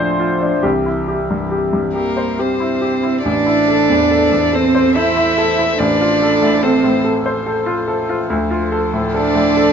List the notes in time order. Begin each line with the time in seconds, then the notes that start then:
Already playing: D2 A2 F3 D4 F4 C5 D5 E5
0.20 F4
0.41 D4
0.63 C2 E3 G4
0.86 E4
1.08 G4
1.30 G2
1.51 G4
1.73 G2
1.95 A#3 G4 A#4
2.17 C5
2.39 C4 G4 C5
2.60 E4
2.82 G4
3.03 E4
3.25 A1 E3 D4 A4 C5 D5
3.46 E4
3.68 A4
3.90 E2
4.11 A4
4.31 E2
4.53 C4 A4 C5
4.75 C5
4.96 E4 A4 E5
5.17 E4
5.38 A4
5.59 E4
5.79 A1 F3 D4 D5
6.01 F4
6.22 A4
6.42 A2
6.63 C4 A4 C5
6.84 A2
7.05 A4
7.26 C5
7.46 A4
7.66 F4
7.88 A4
8.09 F4
8.30 D2 A4 C5
8.51 F4
8.72 A4
8.94 A2
9.14 D4 A4 D5
9.35 A2
9.57 A4